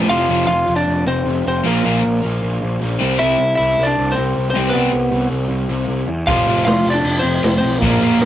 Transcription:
Already playing: C4
0.08 F1 F2 C3 F3 F4 F5
0.29 F1 F2 C3 F3
0.47 F1 F4 F5
0.66 F1 F2 C3 F3
0.76 D4 D5
0.87 F1
1.06 F1 C4 C5
1.25 F1 F2 C3 F3
1.46 F1 C4 C5
1.64 A#1 A#2 F3 A#3 A#4
1.84 A#1 A#2 F3 A#3
2.04 A#1
2.22 A#1 A#2 F3 A#3
2.42 A#1
2.62 A#1
2.80 A#1 A#2 F3 A#3
2.99 C2 C3 G3 C4
3.19 C2 C3 G3 C4 E4 E5
3.38 C2
3.55 C2 C3 E4 E5
3.61 G3 C4
3.78 C2
3.83 D4 D5
3.98 C2
4.12 C4 C5
4.16 C2 C3 G3 C4
4.37 C2
4.50 C4 C5
4.55 C2 C3 G3 C4
4.70 B3 B4
4.74 C2 C3 G3 C4
4.93 C2
5.11 C2 C3 G3
5.15 C4
5.30 C2
5.49 C2
5.69 C2 G3 C4
5.73 C3
5.87 C2
6.07 E2
6.26 F1 F2 C3 F3 F4 F5, kick, crash
6.46 F1 F2 C3 F3, crash
6.65 F1 F4 F5, snare, crash
6.84 F1 F2 C3 F3, crash
6.90 D4 D5
7.04 F1, crash
7.19 F1 C4 C5
7.24 crash
7.43 F1 F2 C3 F3, snare, crash
7.58 C4 C5
7.63 B1, crash
7.78 A#1 A#2 F3 A#3 A#4, kick
7.83 A#3, crash
8.01 A#1 A#2 F3 A#3, crash
8.20 A#1, snare, crash

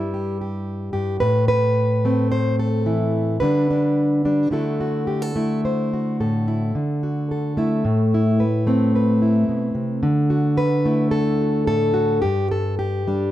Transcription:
Already playing: G2 G3 E4
0.14 G4
0.41 G4
0.93 G2 G4
1.20 A2 B4
1.48 B4
2.05 A3 C4
2.32 C5
2.59 A4
2.86 E3 E4
3.40 D3 G3 D4 B4
3.70 D4
4.25 G3 D4
4.51 D3 A3 E4 F#4 A4
4.81 F#4
5.07 G4
5.22 A4
5.36 A3 E4
5.65 C5
5.93 F#4
6.20 A2 A4
6.48 E4
6.75 D3
7.03 F#4
7.31 A4
7.57 A3 E4
7.85 A2
8.14 E4
8.40 B4
8.67 A3 C4
8.95 B4
9.22 E4
9.49 B2
9.75 C3
10.03 D3
10.30 F#4
10.57 B4
10.85 A3 E4
11.11 A4
11.41 F#4
11.67 A2 A4
11.94 F#4
12.22 G2 G4
12.51 A4
12.79 G4
13.07 G3 D4

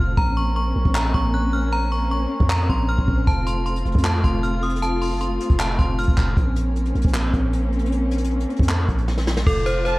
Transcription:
Already playing: A3 C4 F4 F6
0.00 F1
0.18 A#1 A#3 C#4 A#5, kick
0.37 C#6
0.56 C#6
0.76 A#1
0.85 A#1, kick
0.95 A#5, clap
1.14 A#1 C#6, kick
1.34 F#6
1.53 F6
1.73 A#5
1.92 C#6
2.11 C#6
2.40 F2, kick
2.50 A#5, clap
2.69 A#1 C6, kick
2.89 F6
2.98 A#1, kick
3.08 A#1, kick
3.27 F1 A3 F4 A5, kick, closed hi-hat
3.47 C6, closed hi-hat
3.66 C6, closed hi-hat
3.76 closed hi-hat
3.85 F1, closed hi-hat
3.92 F2, kick, closed hi-hat
3.98 closed hi-hat
4.05 A5, clap, closed hi-hat
4.24 F1 C6, kick, closed hi-hat
4.43 F6, closed hi-hat
4.63 D#6, closed hi-hat
4.69 closed hi-hat
4.76 closed hi-hat
4.82 A5, closed hi-hat
5.01 C6, open hi-hat
5.11 F#1
5.21 C6, closed hi-hat
5.40 closed hi-hat
5.50 F1, kick, closed hi-hat
5.60 A5, clap, closed hi-hat
5.79 F1 C6, kick, closed hi-hat
5.98 F#1 F6, closed hi-hat
6.03 closed hi-hat
6.08 F1, kick
6.13 closed hi-hat
6.18 F1, kick, clap, closed hi-hat
6.37 A#1 A#3 C4 C#4, kick, closed hi-hat
6.56 closed hi-hat
6.76 closed hi-hat
6.85 closed hi-hat
6.95 A#1, closed hi-hat
7.02 A#1, kick, closed hi-hat
7.08 closed hi-hat
7.14 clap, closed hi-hat
7.34 A#1, kick, closed hi-hat
7.53 closed hi-hat
7.73 closed hi-hat
7.79 closed hi-hat
7.85 closed hi-hat
7.92 closed hi-hat
8.11 closed hi-hat, open hi-hat
8.18 closed hi-hat
8.24 closed hi-hat
8.31 closed hi-hat
8.40 closed hi-hat
8.50 closed hi-hat
8.56 F2, kick, closed hi-hat
8.63 closed hi-hat
8.69 clap, closed hi-hat
8.89 A#1, kick, closed hi-hat
8.98 closed hi-hat
9.08 snare
9.18 snare
9.27 snare
9.37 snare
9.47 F1 A3 F4 A4, kick, crash, downlifter
9.66 C5, closed hi-hat
9.85 C5 A5, closed hi-hat

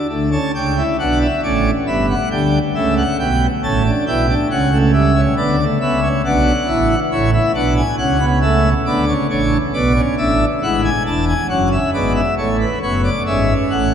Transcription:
0.09 D2 D3 A3
0.32 C#4 A5
0.54 C#2 C#3 D4 G5
0.77 E4
0.99 B1 B2 D4 F#5
1.21 E5
1.43 A1 A2 C#4 D5
1.87 G1 G2 B3 E5
2.10 F#5
2.31 D2 D3 G3 G5
2.75 C#2 C#3 A3 E5
2.98 F#5
3.19 B1 B2 B3 G5
3.63 A1 A2 C#4 A5
3.86 D4
4.07 B1 B2 E4 G5
4.29 D4
4.51 C#2 C#3 C#4 F#5
4.72 A3
4.93 G3 E5
5.15 C#4
5.37 D2 D3 B3 D5
5.59 A3
5.81 C#2 C#3 B3 E5
6.03 C#4
6.25 B1 B2 D4 F#5
6.68 A1 A2 E4
7.11 A1 A2 E4 C#5
7.33 E4 E5
7.54 B1 B2 D4 F#5
7.76 G#5
7.98 C#2 C#3 C#4 F#5
8.20 B3
8.42 A3 E5
8.86 D2 D3 B3 D5
9.08 C#4
9.30 A1 A2 D4 C#5
9.74 B1 B2 B3 D5
9.96 C#4
10.18 A1 A2 D4 E5
10.62 G#1 G#2 E4 F#5
10.84 G#5
11.06 E1 E2 D4 A5
11.28 G#5
11.50 F#1 F#2 C#4 F#5
11.72 E5
11.94 G#1 G#2 B3 D5
12.16 E5
12.37 A1 A2 A3 C#5
12.60 B4
12.82 F#1 F#2 B3 C#5
13.04 D5
13.26 G#1 G#2 C#4 E5
13.70 A1 A2 F#5

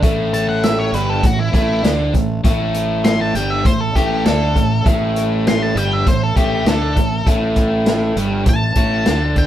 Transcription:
0.02 A1 A2 A3, kick, closed hi-hat
0.34 A5, closed hi-hat
0.49 F#5
0.63 E5, snare, closed hi-hat
0.79 C#5
0.92 G1 G2 G3 B4, closed hi-hat
1.09 A4
1.23 A1 A2 F#4, kick, closed hi-hat
1.40 E4
1.53 A1 A2 A3 E4, kick, closed hi-hat
1.83 D2 D3 D4, snare, closed hi-hat
2.13 A1 A2, kick, closed hi-hat
2.44 A1 A2 A3, kick, closed hi-hat
2.74 closed hi-hat
3.04 C6, snare, closed hi-hat
3.21 A5
3.34 G1 G2 G3 G5, closed hi-hat
3.50 E5
3.65 A1 A2 C5, kick, closed hi-hat
3.81 A4
3.95 A1 A2 A3 G4, kick, closed hi-hat
4.25 D2 D3 D4 A4, snare, closed hi-hat
4.56 A1 A2, kick, closed hi-hat
4.86 A1 A2 A3, kick, closed hi-hat
5.16 closed hi-hat
5.47 C6, snare, closed hi-hat
5.62 A5
5.75 G1 G2 G3 G5, closed hi-hat
5.93 E5
6.06 A1 A2 C5, kick, closed hi-hat
6.23 A4
6.36 A1 A2 A3 G4, kick, closed hi-hat
6.65 D2 D3 D4 A4, snare, closed hi-hat
6.96 A1 A2, kick, closed hi-hat
7.26 A1 A2 A3, kick, closed hi-hat
7.56 kick, closed hi-hat
7.86 snare, closed hi-hat
8.16 G1 G2 G3, closed hi-hat
8.46 A1 A2 A5, kick, closed hi-hat
8.75 A1 A2 A3, kick, closed hi-hat
9.05 D2 D3 D4, snare, closed hi-hat
9.36 G5, kick, closed hi-hat

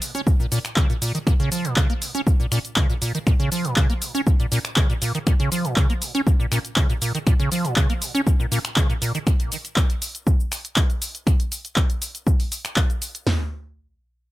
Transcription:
0.02 open hi-hat, cabasa
0.15 C#4, closed hi-hat, cabasa
0.27 kick, cabasa
0.40 A#2, cabasa
0.52 A#2, open hi-hat, cabasa
0.65 finger snap, closed hi-hat, cabasa
0.76 C#3, kick, clap, cabasa
0.90 A#2, closed hi-hat, cabasa
1.02 A#2, open hi-hat, cabasa
1.15 D#3, closed hi-hat, cabasa
1.27 A#2, finger snap, kick, cabasa
1.40 C#3, closed hi-hat, cabasa
1.52 F3, open hi-hat, cabasa
1.65 A#2, closed hi-hat, cabasa
1.76 C#3, kick, clap, cabasa
1.90 A#3, closed hi-hat, cabasa
2.02 open hi-hat, cabasa
2.15 C#4, closed hi-hat, cabasa
2.27 kick, cabasa
2.40 A#2, cabasa
2.52 A#2, finger snap, open hi-hat, cabasa
2.65 closed hi-hat, cabasa
2.76 C#3, kick, clap, cabasa
2.90 A#2, closed hi-hat, cabasa
3.02 A#2, open hi-hat, cabasa
3.15 D#3, closed hi-hat, cabasa
3.27 A#2, finger snap, kick, cabasa
3.40 C#3, closed hi-hat, cabasa
3.52 F3, open hi-hat, cabasa
3.65 A#2, closed hi-hat, cabasa
3.76 C#3, kick, clap, cabasa
3.90 A#3, closed hi-hat, cabasa
4.02 open hi-hat, cabasa
4.15 C#4, closed hi-hat, cabasa
4.27 kick, cabasa
4.40 A#2, closed hi-hat, cabasa
4.52 A#2, open hi-hat, cabasa
4.65 finger snap, closed hi-hat, cabasa
4.76 C#3, kick, clap, cabasa
4.90 A#2, closed hi-hat, cabasa
5.02 A#2, open hi-hat, cabasa
5.15 D#3, closed hi-hat, cabasa
5.27 A#2, finger snap, kick, cabasa
5.40 C#3, closed hi-hat, cabasa
5.52 F3, open hi-hat, cabasa
5.65 A#2, closed hi-hat, cabasa
5.76 C#3, kick, clap, cabasa
5.90 A#3, closed hi-hat, cabasa
6.02 open hi-hat, cabasa
6.15 C#4, closed hi-hat, cabasa
6.27 kick, cabasa
6.40 A#2, cabasa
6.52 A#2, finger snap, open hi-hat, cabasa
6.65 closed hi-hat, cabasa
6.76 C#3, kick, clap, cabasa
6.90 A#2, closed hi-hat, cabasa
7.02 A#2, open hi-hat, cabasa
7.15 D#3, closed hi-hat, cabasa
7.27 A#2, finger snap, kick, cabasa
7.40 C#3, closed hi-hat, cabasa
7.52 F3, open hi-hat, cabasa
7.65 A#2, closed hi-hat, cabasa
7.76 C#3, kick, clap, cabasa
7.90 A#3, closed hi-hat, cabasa
8.02 open hi-hat, cabasa
8.15 C#4, closed hi-hat, cabasa
8.27 kick, cabasa
8.40 A#2, cabasa
8.52 A#2, open hi-hat, cabasa
8.65 finger snap, closed hi-hat, cabasa
8.76 C#3, kick, clap, cabasa
8.90 A#2, closed hi-hat, cabasa
9.02 A#2, open hi-hat, cabasa
9.15 D#3, closed hi-hat, cabasa
9.27 finger snap, kick, cabasa
9.40 closed hi-hat, cabasa
9.52 open hi-hat, cabasa
9.65 closed hi-hat, cabasa
9.76 kick, clap, cabasa
9.90 closed hi-hat, cabasa
10.02 open hi-hat, cabasa
10.15 closed hi-hat, cabasa
10.27 kick, cabasa
10.40 cabasa
10.52 finger snap, open hi-hat, cabasa
10.65 closed hi-hat, cabasa
10.76 kick, clap, cabasa
10.90 closed hi-hat, cabasa
11.02 open hi-hat, cabasa
11.15 closed hi-hat, cabasa
11.27 finger snap, kick, cabasa
11.40 closed hi-hat, cabasa
11.52 open hi-hat, cabasa
11.65 closed hi-hat, cabasa
11.76 kick, clap, cabasa
11.90 closed hi-hat, cabasa
12.02 open hi-hat, cabasa
12.15 closed hi-hat, cabasa
12.27 kick, cabasa
12.40 open hi-hat, cabasa
12.52 open hi-hat, cabasa
12.65 finger snap, closed hi-hat, cabasa
12.76 kick, clap, cabasa
12.90 closed hi-hat, cabasa
13.02 open hi-hat, cabasa
13.15 closed hi-hat, cabasa
13.27 snare, floor tom, open hi-hat

